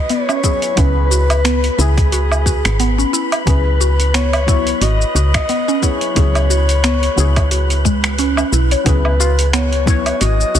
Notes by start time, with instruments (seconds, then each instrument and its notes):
Already playing: synth stab F#3 B3 E4 G#4 C#5, synth texture B4 B5
0.09 synth pluck B3, soft synth lead C#5, closed hi-hat, cabasa
0.29 synth pluck C#4, cabasa, low woodblock
0.43 synth stab F#3 B3 E4 G#4, synth pluck E4, kick, cabasa
0.62 closed hi-hat, cabasa
0.75 fm bass C#2, synth stab F#3 B3 E4 G#4, synth pluck C#4, soft synth lead B4, kick, closed hi-hat, cabasa
1.11 synth pluck F#4, cabasa
1.30 closed hi-hat, cabasa, low woodblock
1.45 synth pluck B3, finger snap, closed hi-hat, cabasa
1.64 closed hi-hat
1.77 fm bass C#2, synth stab F#3 B3 E4 G#4, synth pluck E4, soft synth lead G#4, cabasa
1.98 kick, closed hi-hat, cabasa
2.12 synth pluck F#4, closed hi-hat, cabasa
2.32 cabasa, low woodblock
2.46 synth pluck F#4, kick, cabasa
2.65 fm bass G#1, finger snap, closed hi-hat, cabasa
2.80 synth pluck B3, closed hi-hat, cabasa
2.98 synth pluck C#4, cabasa
3.13 synth pluck E4, cabasa
3.32 closed hi-hat, cabasa, low woodblock
3.45 fm bass C#2, synth stab F#3 B3 E4 G#4, synth pluck C#4, soft synth lead B4, kick, closed hi-hat, cabasa
3.81 synth pluck F#4, cabasa
4.00 closed hi-hat, cabasa
4.14 synth pluck B3, soft synth lead C#5, finger snap, closed hi-hat, cabasa
4.33 closed hi-hat, low woodblock
4.46 synth stab F#3 B3 E4, synth pluck E4, kick, cabasa
4.50 synth stab C#5
4.67 closed hi-hat, cabasa
4.81 fm bass G#1, synth pluck F#4, soft synth lead D#5, closed hi-hat, cabasa
5.01 cabasa
5.15 fm bass C#2, synth pluck F#4, cabasa
5.34 soft synth lead D#5, finger snap, kick, closed hi-hat, cabasa, low woodblock
5.49 synth pluck B3, closed hi-hat, cabasa
5.68 synth pluck C#4, cabasa
5.81 synth stab F#3 B3 E4 G#4, synth pluck E4, soft synth lead C#5, kick, cabasa
6.01 closed hi-hat, cabasa
6.15 fm bass C#2, synth stab F#3 B3 E4 G#4, synth pluck C#4, kick, closed hi-hat, cabasa
6.35 closed hi-hat, cabasa, low woodblock
6.50 synth pluck F#4, cabasa
6.69 closed hi-hat, cabasa
6.84 synth pluck B3, finger snap, closed hi-hat, cabasa
7.03 closed hi-hat
7.16 fm bass C#2, synth stab F#3 B3 E4, synth pluck E4, cabasa
7.20 synth stab G#4
7.36 kick, closed hi-hat, cabasa, low woodblock
7.51 synth pluck F#4, closed hi-hat, cabasa
7.70 closed hi-hat, cabasa
7.85 synth pluck G#3, kick, cabasa
8.04 finger snap, closed hi-hat, cabasa
8.18 synth pluck C#4, closed hi-hat, cabasa
8.37 synth pluck C#4, cabasa, low woodblock
8.52 fm bass B1, synth pluck E4, cabasa
8.71 synth pluck C#5, closed hi-hat, cabasa
8.84 fm bass C#2, synth stab F#3 B3 E4, synth pluck C#4, soft synth lead B4, synth texture B4 G#5, kick, closed hi-hat, cabasa
8.88 synth stab G#4
9.05 low woodblock
9.20 synth pluck F#4, tabla na, tabla tin, cabasa
9.39 closed hi-hat, cabasa
9.52 synth pluck B3, soft synth lead C#5, finger snap, closed hi-hat, cabasa
9.73 closed hi-hat
9.86 synth stab F#3 B3 E4, synth pluck E4, kick, cabasa
9.90 synth stab C#5
10.06 closed hi-hat, cabasa, low woodblock
10.20 fm bass G#1, synth pluck F#4, soft synth lead D#5, closed hi-hat, cabasa
10.41 cabasa
10.55 fm bass C#2, synth pluck F#4, cabasa